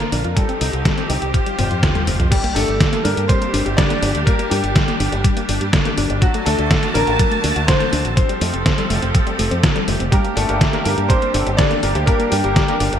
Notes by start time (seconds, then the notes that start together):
Already playing: A#3 D4 F4 A#4
0.00 A#3, closed hi-hat
0.12 A#1 D4, open hi-hat
0.24 F2 F4, closed hi-hat
0.35 G3 C4 D#4 G4 A4, kick, closed hi-hat
0.49 C4, closed hi-hat
0.61 C2 D#4, open hi-hat
0.73 C2 G4, closed hi-hat
0.85 G3, kick, snare, closed hi-hat
0.98 C4, closed hi-hat
1.08 C2 D#4 G4, open hi-hat
1.22 C2 G4, closed hi-hat
1.34 F3 F4 C5, kick, closed hi-hat
1.46 G3, closed hi-hat
1.59 F1 C4, open hi-hat, high tom
1.71 F2 F4, closed hi-hat
1.83 F3, kick, snare, closed hi-hat, mid tom
1.95 G3, closed hi-hat, mid tom
2.07 F1 C4, open hi-hat
2.20 F2 F4, closed hi-hat, mid tom
2.30 G3 D4 G4, kick, closed hi-hat, crash
2.44 A#3, closed hi-hat
2.55 G1 A3 D4 A4, open hi-hat
2.68 G1 G4, closed hi-hat
2.80 G3, kick, snare, closed hi-hat
2.93 A#3, closed hi-hat
3.04 G2 A#3 D4 A#4, open hi-hat
3.17 G2 G4, closed hi-hat
3.28 G3 C4 C5, kick, closed hi-hat
3.41 A#3, closed hi-hat
3.54 G1 D4, open hi-hat
3.66 G1 G4, closed hi-hat
3.77 G3 D4 D5, kick, snare, closed hi-hat
3.90 A#3, closed hi-hat
4.02 G1 D4, open hi-hat
4.15 D2 G4, closed hi-hat
4.26 G3 A#3 A#4, kick, closed hi-hat
4.39 A#3, closed hi-hat
4.50 G2 G3 D4 G4, open hi-hat
4.63 G1 G4, closed hi-hat
4.76 G3, kick, snare, closed hi-hat
4.88 A#3, closed hi-hat
5.00 G1 D4, open hi-hat
5.12 G1 G4, closed hi-hat
5.24 G3, kick, closed hi-hat
5.37 A#3, closed hi-hat
5.49 G1 D4, open hi-hat
5.61 G2 G4, closed hi-hat
5.73 G3, kick, snare, closed hi-hat
5.85 A#3, closed hi-hat
5.98 G1 D4, open hi-hat
6.10 G1 G4, closed hi-hat
6.21 D3 F#3 F#4 A5, kick, closed hi-hat
6.34 A3, closed hi-hat
6.46 D2 A3 D4 A4, open hi-hat
6.59 D2 F#4, closed hi-hat
6.71 F#3, kick, snare, closed hi-hat
6.83 A3, closed hi-hat
6.94 A1 A#3 D4 A#4, open hi-hat
7.07 A1 F#4, closed hi-hat
7.19 F#3, kick, closed hi-hat
7.32 A3, closed hi-hat
7.44 D2 D4, open hi-hat
7.56 D2 F#4, closed hi-hat
7.67 F#3 C4 C5, kick, snare, closed hi-hat
7.80 A3, closed hi-hat
7.93 D2 D4, open hi-hat
8.05 A1 F#4, closed hi-hat
8.16 F3 C4 G4 A4 C5, kick, closed hi-hat
8.29 G3, closed hi-hat
8.41 F2 A3, open hi-hat
8.54 F1 C4, closed hi-hat
8.66 F3, kick, snare, closed hi-hat
8.78 G3, closed hi-hat
8.90 F1 A3, open hi-hat
9.02 F1 C4, closed hi-hat
9.15 F3, kick, closed hi-hat
9.27 G3, closed hi-hat
9.39 F1 A3, open hi-hat
9.51 F2 C4, closed hi-hat
9.63 F3, kick, snare, closed hi-hat
9.76 G3, closed hi-hat
9.88 F1 A3, open hi-hat
10.00 F1 C4, closed hi-hat
10.11 G3 A#3 D4 G4 A#4, kick, closed hi-hat
10.24 A#3, closed hi-hat
10.36 G1 A3 D4 A4, open hi-hat
10.49 G1 A#3 D4 G4 A#4, closed hi-hat
10.61 G3, kick, snare, closed hi-hat
10.73 A#3 D4 G4 A#4, closed hi-hat
10.84 G2 A#3 D4 A#4, open hi-hat
10.98 G2 G4, closed hi-hat
11.09 G3 A#3 C4 D4 G4 A#4 C5, kick, closed hi-hat
11.22 A#3, closed hi-hat
11.34 G1 A#3 D4 G4 A4, open hi-hat
11.46 G1 G4, closed hi-hat
11.57 G3 A#3 D4 G4 A4 D5, kick, snare, closed hi-hat
11.71 A#3, closed hi-hat
11.83 G1 A#3 D4 G4 A#4, open hi-hat
11.95 D2 A#3 D4 G4 C5, closed hi-hat
12.06 G3 A#3 D4 G4 A#4, kick, closed hi-hat
12.20 A#3, closed hi-hat
12.30 G2 G3 D4 G4, open hi-hat
12.44 G1 A#3 D4 G4 A#4, closed hi-hat
12.56 G3, kick, snare, closed hi-hat
12.68 A#3 D4 G4 A#4, closed hi-hat
12.80 G1 D4, open hi-hat
12.93 G1 G4, closed hi-hat